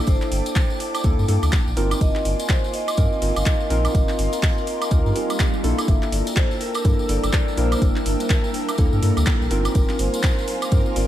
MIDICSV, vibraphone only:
0, 0, Header, 1, 2, 480
1, 0, Start_track
1, 0, Tempo, 483871
1, 74, Time_signature, 4, 2, 24, 8
1, 10984, End_track
2, 0, Start_track
2, 0, Title_t, "Vibraphone"
2, 0, Program_c, 0, 11
2, 74, Note_on_c, 0, 72, 82
2, 994, Note_off_c, 0, 72, 0
2, 1995, Note_on_c, 0, 75, 109
2, 2235, Note_on_c, 0, 74, 101
2, 2242, Note_off_c, 0, 75, 0
2, 2414, Note_off_c, 0, 74, 0
2, 2426, Note_on_c, 0, 74, 68
2, 2473, Note_on_c, 0, 72, 92
2, 2474, Note_off_c, 0, 74, 0
2, 2712, Note_on_c, 0, 75, 98
2, 2721, Note_off_c, 0, 72, 0
2, 5314, Note_off_c, 0, 75, 0
2, 5835, Note_on_c, 0, 76, 107
2, 6075, Note_on_c, 0, 74, 94
2, 6082, Note_off_c, 0, 76, 0
2, 6315, Note_on_c, 0, 72, 94
2, 6322, Note_off_c, 0, 74, 0
2, 6423, Note_off_c, 0, 72, 0
2, 6554, Note_on_c, 0, 70, 93
2, 7035, Note_on_c, 0, 74, 100
2, 7049, Note_off_c, 0, 70, 0
2, 7515, Note_on_c, 0, 72, 88
2, 7529, Note_off_c, 0, 74, 0
2, 7757, Note_on_c, 0, 70, 79
2, 7762, Note_off_c, 0, 72, 0
2, 8676, Note_off_c, 0, 70, 0
2, 9675, Note_on_c, 0, 70, 82
2, 9913, Note_on_c, 0, 72, 89
2, 9922, Note_off_c, 0, 70, 0
2, 10360, Note_off_c, 0, 72, 0
2, 10395, Note_on_c, 0, 72, 90
2, 10875, Note_on_c, 0, 74, 101
2, 10889, Note_off_c, 0, 72, 0
2, 10984, Note_off_c, 0, 74, 0
2, 10984, End_track
0, 0, End_of_file